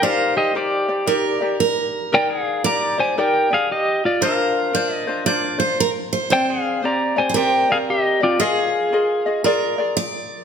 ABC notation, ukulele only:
X:1
M:4/4
L:1/8
Q:"Swing" 1/4=115
K:Eb
V:1 name="Ukulele"
[EGBd]2 [EGBd] [EGd] [EGBd] [EGd]3 | [EBd]2 [EGBd] [EGd] [EGBd] [EGd]3 | [DFBc]2 [DFBc] [DFc] [DFBc] [DFc]3 | [Ccd]2 [CGcd] [CGd] [CGcd] [CGd]2 [CGd] |
[FABe]2 [FABe] [FAe] [FABd] [FAd]3 |]